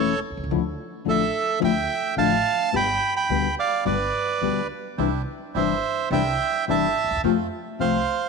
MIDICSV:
0, 0, Header, 1, 5, 480
1, 0, Start_track
1, 0, Key_signature, 0, "major"
1, 0, Tempo, 560748
1, 431, Time_signature, 4, 2, 24, 8
1, 7095, End_track
2, 0, Start_track
2, 0, Title_t, "Bandoneon"
2, 0, Program_c, 0, 23
2, 0, Note_on_c, 0, 69, 70
2, 0, Note_on_c, 0, 73, 94
2, 166, Note_off_c, 0, 73, 0
2, 168, Note_off_c, 0, 69, 0
2, 930, Note_on_c, 0, 69, 72
2, 943, Note_on_c, 0, 76, 92
2, 1360, Note_off_c, 0, 69, 0
2, 1367, Note_off_c, 0, 76, 0
2, 1404, Note_on_c, 0, 76, 84
2, 1409, Note_on_c, 0, 79, 99
2, 1837, Note_off_c, 0, 76, 0
2, 1839, Note_off_c, 0, 79, 0
2, 1866, Note_on_c, 0, 77, 87
2, 1870, Note_on_c, 0, 81, 113
2, 2308, Note_off_c, 0, 77, 0
2, 2357, Note_off_c, 0, 81, 0
2, 2362, Note_on_c, 0, 83, 109
2, 2366, Note_on_c, 0, 79, 90
2, 2688, Note_off_c, 0, 79, 0
2, 2693, Note_off_c, 0, 83, 0
2, 2706, Note_on_c, 0, 83, 94
2, 2713, Note_on_c, 0, 79, 79
2, 3037, Note_off_c, 0, 83, 0
2, 3041, Note_off_c, 0, 79, 0
2, 3075, Note_on_c, 0, 74, 70
2, 3078, Note_on_c, 0, 77, 96
2, 3289, Note_off_c, 0, 74, 0
2, 3293, Note_off_c, 0, 77, 0
2, 3302, Note_on_c, 0, 74, 85
2, 3311, Note_on_c, 0, 71, 67
2, 3997, Note_off_c, 0, 74, 0
2, 4002, Note_off_c, 0, 71, 0
2, 4764, Note_on_c, 0, 76, 84
2, 4771, Note_on_c, 0, 72, 68
2, 5210, Note_off_c, 0, 76, 0
2, 5213, Note_off_c, 0, 72, 0
2, 5241, Note_on_c, 0, 76, 79
2, 5248, Note_on_c, 0, 79, 98
2, 5689, Note_off_c, 0, 76, 0
2, 5693, Note_off_c, 0, 79, 0
2, 5737, Note_on_c, 0, 76, 81
2, 5738, Note_on_c, 0, 81, 96
2, 6175, Note_off_c, 0, 76, 0
2, 6175, Note_off_c, 0, 81, 0
2, 6681, Note_on_c, 0, 77, 86
2, 6685, Note_on_c, 0, 72, 64
2, 7095, Note_off_c, 0, 72, 0
2, 7095, Note_off_c, 0, 77, 0
2, 7095, End_track
3, 0, Start_track
3, 0, Title_t, "Bandoneon"
3, 0, Program_c, 1, 23
3, 4257, Note_on_c, 1, 60, 84
3, 4261, Note_on_c, 1, 62, 74
3, 4262, Note_on_c, 1, 64, 87
3, 4467, Note_off_c, 1, 60, 0
3, 4468, Note_off_c, 1, 62, 0
3, 4469, Note_off_c, 1, 64, 0
3, 4739, Note_on_c, 1, 60, 54
3, 4743, Note_on_c, 1, 62, 56
3, 4744, Note_on_c, 1, 64, 66
3, 4950, Note_off_c, 1, 60, 0
3, 4953, Note_off_c, 1, 62, 0
3, 4953, Note_off_c, 1, 64, 0
3, 5226, Note_on_c, 1, 60, 78
3, 5229, Note_on_c, 1, 62, 78
3, 5230, Note_on_c, 1, 64, 90
3, 5435, Note_off_c, 1, 60, 0
3, 5437, Note_off_c, 1, 62, 0
3, 5437, Note_off_c, 1, 64, 0
3, 5718, Note_on_c, 1, 60, 63
3, 5722, Note_on_c, 1, 62, 56
3, 5723, Note_on_c, 1, 64, 68
3, 5922, Note_off_c, 1, 60, 0
3, 5924, Note_off_c, 1, 62, 0
3, 5924, Note_off_c, 1, 64, 0
3, 6190, Note_on_c, 1, 57, 87
3, 6195, Note_on_c, 1, 60, 76
3, 6195, Note_on_c, 1, 65, 86
3, 6394, Note_off_c, 1, 57, 0
3, 6397, Note_off_c, 1, 60, 0
3, 6397, Note_off_c, 1, 65, 0
3, 6675, Note_on_c, 1, 57, 60
3, 6677, Note_on_c, 1, 60, 53
3, 6680, Note_on_c, 1, 65, 60
3, 6876, Note_off_c, 1, 57, 0
3, 6877, Note_off_c, 1, 60, 0
3, 6879, Note_off_c, 1, 65, 0
3, 7095, End_track
4, 0, Start_track
4, 0, Title_t, "Nylon-string guitar"
4, 0, Program_c, 2, 24
4, 0, Note_on_c, 2, 52, 81
4, 0, Note_on_c, 2, 57, 86
4, 0, Note_on_c, 2, 61, 90
4, 0, Note_on_c, 2, 64, 82
4, 106, Note_off_c, 2, 57, 0
4, 107, Note_off_c, 2, 52, 0
4, 110, Note_off_c, 2, 61, 0
4, 111, Note_off_c, 2, 64, 0
4, 431, Note_on_c, 2, 50, 86
4, 435, Note_on_c, 2, 57, 82
4, 436, Note_on_c, 2, 53, 77
4, 442, Note_on_c, 2, 64, 87
4, 443, Note_on_c, 2, 62, 84
4, 508, Note_off_c, 2, 50, 0
4, 510, Note_off_c, 2, 53, 0
4, 510, Note_off_c, 2, 57, 0
4, 513, Note_off_c, 2, 64, 0
4, 514, Note_off_c, 2, 62, 0
4, 896, Note_on_c, 2, 50, 77
4, 902, Note_on_c, 2, 53, 69
4, 903, Note_on_c, 2, 57, 69
4, 905, Note_on_c, 2, 62, 75
4, 912, Note_on_c, 2, 64, 76
4, 1044, Note_off_c, 2, 50, 0
4, 1047, Note_off_c, 2, 53, 0
4, 1048, Note_off_c, 2, 57, 0
4, 1049, Note_off_c, 2, 62, 0
4, 1052, Note_off_c, 2, 64, 0
4, 1367, Note_on_c, 2, 53, 88
4, 1370, Note_on_c, 2, 50, 77
4, 1373, Note_on_c, 2, 57, 92
4, 1375, Note_on_c, 2, 62, 92
4, 1379, Note_on_c, 2, 64, 100
4, 1450, Note_off_c, 2, 53, 0
4, 1451, Note_off_c, 2, 50, 0
4, 1453, Note_off_c, 2, 57, 0
4, 1454, Note_off_c, 2, 62, 0
4, 1456, Note_off_c, 2, 64, 0
4, 1850, Note_on_c, 2, 50, 83
4, 1858, Note_on_c, 2, 53, 71
4, 1860, Note_on_c, 2, 57, 75
4, 1862, Note_on_c, 2, 62, 92
4, 1863, Note_on_c, 2, 64, 80
4, 1999, Note_off_c, 2, 50, 0
4, 2003, Note_off_c, 2, 53, 0
4, 2004, Note_off_c, 2, 57, 0
4, 2005, Note_off_c, 2, 62, 0
4, 2005, Note_off_c, 2, 64, 0
4, 2330, Note_on_c, 2, 47, 78
4, 2330, Note_on_c, 2, 50, 78
4, 2334, Note_on_c, 2, 59, 96
4, 2336, Note_on_c, 2, 55, 86
4, 2343, Note_on_c, 2, 67, 100
4, 2411, Note_off_c, 2, 47, 0
4, 2411, Note_off_c, 2, 50, 0
4, 2413, Note_off_c, 2, 59, 0
4, 2414, Note_off_c, 2, 55, 0
4, 2418, Note_off_c, 2, 67, 0
4, 2821, Note_on_c, 2, 47, 73
4, 2824, Note_on_c, 2, 50, 75
4, 2825, Note_on_c, 2, 55, 80
4, 2828, Note_on_c, 2, 59, 82
4, 2835, Note_on_c, 2, 67, 79
4, 2965, Note_off_c, 2, 47, 0
4, 2966, Note_off_c, 2, 50, 0
4, 2967, Note_off_c, 2, 55, 0
4, 2968, Note_off_c, 2, 59, 0
4, 2971, Note_off_c, 2, 67, 0
4, 3295, Note_on_c, 2, 47, 78
4, 3300, Note_on_c, 2, 55, 92
4, 3301, Note_on_c, 2, 50, 84
4, 3304, Note_on_c, 2, 59, 89
4, 3305, Note_on_c, 2, 67, 96
4, 3375, Note_off_c, 2, 47, 0
4, 3377, Note_off_c, 2, 55, 0
4, 3378, Note_off_c, 2, 50, 0
4, 3379, Note_off_c, 2, 59, 0
4, 3380, Note_off_c, 2, 67, 0
4, 3781, Note_on_c, 2, 47, 71
4, 3784, Note_on_c, 2, 50, 62
4, 3785, Note_on_c, 2, 55, 74
4, 3789, Note_on_c, 2, 67, 76
4, 3791, Note_on_c, 2, 59, 78
4, 3932, Note_off_c, 2, 47, 0
4, 3933, Note_off_c, 2, 50, 0
4, 3934, Note_off_c, 2, 55, 0
4, 3936, Note_off_c, 2, 67, 0
4, 3937, Note_off_c, 2, 59, 0
4, 4265, Note_on_c, 2, 52, 73
4, 4266, Note_on_c, 2, 48, 86
4, 4271, Note_on_c, 2, 62, 89
4, 4275, Note_on_c, 2, 55, 73
4, 4276, Note_on_c, 2, 64, 100
4, 4345, Note_off_c, 2, 52, 0
4, 4346, Note_off_c, 2, 48, 0
4, 4349, Note_off_c, 2, 62, 0
4, 4351, Note_off_c, 2, 55, 0
4, 4351, Note_off_c, 2, 64, 0
4, 4756, Note_on_c, 2, 48, 73
4, 4761, Note_on_c, 2, 52, 72
4, 4761, Note_on_c, 2, 55, 65
4, 4765, Note_on_c, 2, 62, 70
4, 4767, Note_on_c, 2, 64, 72
4, 4902, Note_off_c, 2, 48, 0
4, 4905, Note_off_c, 2, 52, 0
4, 4905, Note_off_c, 2, 55, 0
4, 4907, Note_off_c, 2, 62, 0
4, 4908, Note_off_c, 2, 64, 0
4, 5231, Note_on_c, 2, 48, 82
4, 5239, Note_on_c, 2, 52, 86
4, 5239, Note_on_c, 2, 55, 80
4, 5240, Note_on_c, 2, 64, 101
4, 5242, Note_on_c, 2, 62, 94
4, 5312, Note_off_c, 2, 48, 0
4, 5316, Note_off_c, 2, 52, 0
4, 5316, Note_off_c, 2, 55, 0
4, 5317, Note_off_c, 2, 64, 0
4, 5318, Note_off_c, 2, 62, 0
4, 5716, Note_on_c, 2, 52, 72
4, 5717, Note_on_c, 2, 48, 77
4, 5726, Note_on_c, 2, 55, 75
4, 5729, Note_on_c, 2, 62, 75
4, 5731, Note_on_c, 2, 64, 80
4, 5865, Note_off_c, 2, 48, 0
4, 5865, Note_off_c, 2, 52, 0
4, 5870, Note_off_c, 2, 55, 0
4, 5871, Note_off_c, 2, 62, 0
4, 5873, Note_off_c, 2, 64, 0
4, 6195, Note_on_c, 2, 48, 77
4, 6197, Note_on_c, 2, 57, 96
4, 6202, Note_on_c, 2, 53, 79
4, 6203, Note_on_c, 2, 60, 87
4, 6209, Note_on_c, 2, 65, 88
4, 6274, Note_off_c, 2, 48, 0
4, 6275, Note_off_c, 2, 57, 0
4, 6277, Note_off_c, 2, 53, 0
4, 6278, Note_off_c, 2, 60, 0
4, 6281, Note_off_c, 2, 65, 0
4, 6668, Note_on_c, 2, 48, 75
4, 6675, Note_on_c, 2, 57, 74
4, 6676, Note_on_c, 2, 53, 68
4, 6678, Note_on_c, 2, 60, 83
4, 6682, Note_on_c, 2, 65, 74
4, 6817, Note_off_c, 2, 48, 0
4, 6820, Note_off_c, 2, 57, 0
4, 6821, Note_off_c, 2, 53, 0
4, 6822, Note_off_c, 2, 60, 0
4, 6824, Note_off_c, 2, 65, 0
4, 7095, End_track
5, 0, Start_track
5, 0, Title_t, "Upright bass"
5, 0, Program_c, 3, 32
5, 0, Note_on_c, 3, 28, 69
5, 157, Note_off_c, 3, 28, 0
5, 261, Note_on_c, 3, 35, 51
5, 314, Note_off_c, 3, 35, 0
5, 319, Note_on_c, 3, 36, 74
5, 369, Note_off_c, 3, 36, 0
5, 374, Note_on_c, 3, 37, 85
5, 433, Note_off_c, 3, 37, 0
5, 437, Note_on_c, 3, 38, 92
5, 634, Note_off_c, 3, 38, 0
5, 908, Note_on_c, 3, 33, 73
5, 1105, Note_off_c, 3, 33, 0
5, 1386, Note_on_c, 3, 38, 111
5, 1583, Note_off_c, 3, 38, 0
5, 1857, Note_on_c, 3, 33, 70
5, 2058, Note_off_c, 3, 33, 0
5, 2346, Note_on_c, 3, 31, 96
5, 2544, Note_off_c, 3, 31, 0
5, 2819, Note_on_c, 3, 38, 78
5, 3020, Note_off_c, 3, 38, 0
5, 3302, Note_on_c, 3, 31, 99
5, 3504, Note_off_c, 3, 31, 0
5, 3780, Note_on_c, 3, 38, 69
5, 3988, Note_off_c, 3, 38, 0
5, 4266, Note_on_c, 3, 36, 92
5, 4471, Note_off_c, 3, 36, 0
5, 4750, Note_on_c, 3, 31, 73
5, 4956, Note_off_c, 3, 31, 0
5, 5226, Note_on_c, 3, 36, 101
5, 5435, Note_off_c, 3, 36, 0
5, 5718, Note_on_c, 3, 31, 69
5, 5922, Note_off_c, 3, 31, 0
5, 6029, Note_on_c, 3, 38, 56
5, 6080, Note_off_c, 3, 38, 0
5, 6085, Note_on_c, 3, 39, 75
5, 6128, Note_off_c, 3, 39, 0
5, 6133, Note_on_c, 3, 40, 81
5, 6190, Note_off_c, 3, 40, 0
5, 6195, Note_on_c, 3, 41, 96
5, 6397, Note_off_c, 3, 41, 0
5, 6672, Note_on_c, 3, 36, 69
5, 6875, Note_off_c, 3, 36, 0
5, 7095, End_track
0, 0, End_of_file